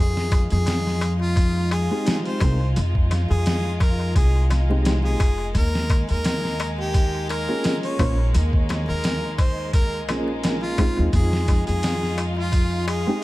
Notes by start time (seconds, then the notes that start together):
Already playing: F2 G#3 D#4 F4
0.00 G#4
0.17 snare, darbuka tek
0.32 kick, closed hi-hat, darbuka tek
0.50 F2 G#4, closed hi-hat, darbuka tek
0.66 snare, closed hi-hat, darbuka tek
0.87 snare, darbuka tek
1.01 closed hi-hat, darbuka tek
1.20 F4, darbuka tek
1.36 kick, closed hi-hat, darbuka tek
1.55 darbuka tek
1.71 G#4, closed hi-hat, darbuka tek
1.90 G#3 C4 D#4 G4, darbuka tek
2.06 snare, closed hi-hat, darbuka tek
2.25 C5, closed hi-hat, darbuka tek
2.40 C2 G#3 C4 D#4 A#4, kick, closed hi-hat, darbuka tek
2.60 darbuka tek
2.76 F2, closed hi-hat, darbuka tek
2.95 kick, darbuka tek
3.11 snare, closed hi-hat, darbuka tek
3.31 F2 G#4, darbuka tek
3.46 snare, closed hi-hat, darbuka tek
3.65 darbuka tek
3.80 A#4, kick, closed hi-hat, darbuka tek
4.00 darbuka tek
4.15 C2 G#4, kick, closed hi-hat, darbuka tek
4.35 darbuka tek
4.50 snare, closed hi-hat, darbuka tek
4.69 G#3 C4 D#4 G4, darbuka tek
4.85 snare, closed hi-hat, darbuka tek
5.04 G#4, darbuka tek
5.20 F1, kick, closed hi-hat, darbuka tek
5.38 darbuka tek
5.55 D#2 A#3 A#4, kick, closed hi-hat, darbuka tek
5.74 snare, darbuka tek
5.90 kick, closed hi-hat, darbuka tek
6.08 D#2 A#4, closed hi-hat, darbuka tek
6.24 snare, closed hi-hat, darbuka tek
6.43 snare, darbuka tek
6.60 closed hi-hat, darbuka tek
6.79 G4, darbuka tek
6.94 kick, closed hi-hat, darbuka tek
7.14 darbuka tek
7.29 A#4, closed hi-hat, darbuka tek
7.48 A#3 C#4 F4 G#4, darbuka tek
7.64 snare, closed hi-hat, darbuka tek
7.83 C#5, closed hi-hat, darbuka tek
7.99 A#1 A#3 C#4 F4 C5, kick, closed hi-hat, darbuka tek
8.17 darbuka tek
8.34 D#2, closed hi-hat, darbuka tek
8.53 kick, darbuka tek
8.69 snare, closed hi-hat, darbuka tek
8.88 D#2 A#4, darbuka tek
9.04 snare, closed hi-hat, darbuka tek
9.24 darbuka tek
9.38 C5, kick, closed hi-hat, darbuka tek
9.58 darbuka tek
9.73 A#4, kick, closed hi-hat, darbuka tek
9.94 darbuka tek
10.08 A#1 A#3 C#4 F4 G#4, snare, closed hi-hat, darbuka tek
10.28 darbuka tek
10.43 snare, closed hi-hat, darbuka tek
10.62 F4, darbuka tek
10.78 G#3 C4 D#4 F4, kick, closed hi-hat, darbuka tek
10.97 D#2, darbuka tek
11.13 F2 F4 G#4, kick, closed hi-hat, darbuka tek
11.31 snare, darbuka tek
11.48 kick, closed hi-hat, darbuka tek
11.67 F2 G#4, closed hi-hat, darbuka tek
11.83 snare, closed hi-hat, darbuka tek
12.01 snare, darbuka tek
12.18 closed hi-hat, darbuka tek
12.37 F4, darbuka tek
12.52 kick, closed hi-hat, darbuka tek
12.70 darbuka tek
12.88 G#4, closed hi-hat, darbuka tek
13.07 G#3 C4 D#4 G4, darbuka tek